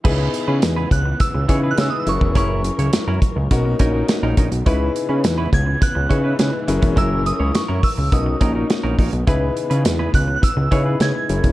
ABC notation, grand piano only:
X:1
M:4/4
L:1/8
Q:1/4=104
K:C#dor
V:1 name="Grand piano"
[B,DEG]3 z2 [B,DEG]2 [CEGA]- | [CEGA]2 z2 [CDFA] [CDFA]2 z | [DEGB]3 z2 [DEGB]2 [CEGA]- | [CEGA]2 z2 [CDFA] [CDFA]2 z |
[DEGB]3 z2 [DEGB]2 [CEGA] |]